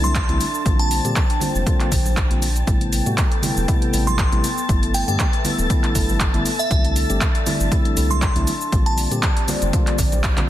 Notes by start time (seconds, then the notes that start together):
Already playing: C2 D3 G3 A3 C4 D4 E4 A4 E5 A5 A6
0.03 C6, high conga, shaker
0.15 kick, clap, closed hi-hat, shaker
0.28 C2 D3 G3 A3 C4 E4, closed hi-hat, high conga
0.41 open hi-hat, shaker
0.54 shaker
0.65 A#1 D3 G3 A#3 C4 F4 C5 G5, kick, closed hi-hat, shaker
0.79 A5, closed hi-hat
0.91 open hi-hat, shaker
1.04 A#2 D3 G3 A#3 C4 G4, closed hi-hat, shaker
1.16 kick, clap, closed hi-hat, shaker
1.30 closed hi-hat
1.40 D3 G3 A#3 C4 F4, open hi-hat, low conga, shaker
1.55 F1, high conga, shaker
1.66 D3 G3 A#3 C4 F4, kick, closed hi-hat, shaker
1.80 clap, closed hi-hat
1.91 A#1, kick, open hi-hat, low conga, shaker
2.05 high conga, shaker
2.17 kick, clap, closed hi-hat, shaker
2.30 A#1 D3 G3 A#3 C4 F4, closed hi-hat
2.42 open hi-hat, shaker
2.56 closed hi-hat, shaker
2.67 A1 C3 G3 A3 B3 E4 A4 G5 A5 A6, kick, closed hi-hat, shaker
2.81 closed hi-hat
2.93 open hi-hat, shaker
3.06 A2 C3 G3 A3 B3 F#4, closed hi-hat, shaker
3.18 kick, clap, closed hi-hat, shaker
3.32 closed hi-hat
3.42 C3 G3 A3 B3 E4, open hi-hat, low conga, shaker
3.57 E1, high conga, shaker
3.68 C3 G3 A3 B3 E4, kick, closed hi-hat, shaker
3.82 closed hi-hat
3.93 A1 C3 G3 A3 B3 E4, open hi-hat, shaker
4.07 C6, high conga, shaker
4.19 kick, clap, closed hi-hat, shaker
4.32 A1 C3 G3 A3 B3 E4, closed hi-hat, high conga
4.44 open hi-hat, shaker
4.58 shaker
4.69 G1 D3 G3 A3 B3 E4 A4 E5, kick, closed hi-hat, shaker
4.83 closed hi-hat
4.94 G5, open hi-hat, shaker
5.08 G2 D3 G3 A3 B3 G4 G5, closed hi-hat, shaker
5.19 kick, clap, closed hi-hat, shaker
5.33 closed hi-hat
5.44 D3 G3 A3 B3 E4, open hi-hat, low conga, shaker
5.58 D1, high conga, shaker
5.70 D3 G3 A3 B3 E4, kick, closed hi-hat, shaker
5.84 clap, closed hi-hat
5.95 G1 D3 G3 A3 B3 E4, kick, open hi-hat, low conga, shaker
6.09 high conga, shaker
6.20 kick, clap, closed hi-hat, shaker
6.34 G1 D3 G3 A3 B3 E4, closed hi-hat
6.46 open hi-hat, shaker
6.59 E5, shaker
6.70 C2 D3 G3 A3 C4 D4 E4 E5, kick, closed hi-hat, shaker
6.85 closed hi-hat
6.96 open hi-hat, shaker
7.09 G1 D3 G3 A3 C4 G4, closed hi-hat, shaker
7.21 kick, clap, closed hi-hat, shaker
7.35 closed hi-hat
7.46 D3 G3 A3 C4 E4, open hi-hat, low conga, shaker
7.60 G1, high conga, shaker
7.71 D3 G3 A3 C4 E4, kick, closed hi-hat, shaker
7.85 closed hi-hat
7.96 C2 D3 G3 A3 C4 E4, open hi-hat, shaker
8.10 C6, high conga, shaker
8.22 kick, clap, closed hi-hat, shaker
8.35 C2 D3 G3 A3 C4 E4, closed hi-hat, high conga
8.47 open hi-hat, shaker
8.61 shaker
8.72 A#1 D3 G3 A#3 C4 F4 G4 D5, kick, closed hi-hat, shaker
8.86 A5, closed hi-hat
8.98 open hi-hat, shaker
9.11 A#2 D3 G3 A#3 C4 G4, closed hi-hat, shaker
9.23 kick, clap, closed hi-hat, shaker
9.37 closed hi-hat
9.48 D3 G3 A#3 C4 F4, open hi-hat, low conga, shaker
9.62 F1, closed hi-hat, high conga, shaker
9.73 D3 G3 A#3 C4 F4, kick, closed hi-hat, shaker
9.87 clap, closed hi-hat
9.98 A#1, kick, open hi-hat, low conga, shaker
10.12 closed hi-hat, high conga, shaker
10.24 kick, clap, closed hi-hat, shaker
10.37 A#1 D3 G3 A#3 C4 F4, clap, closed hi-hat, high conga, low conga